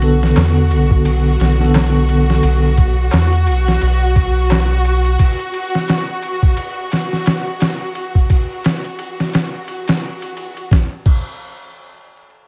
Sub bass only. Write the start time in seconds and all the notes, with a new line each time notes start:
Already playing: B1
0.36 E2
0.71 B1
1.40 B1
2.43 B1
3.13 E2
3.47 B1
3.82 B1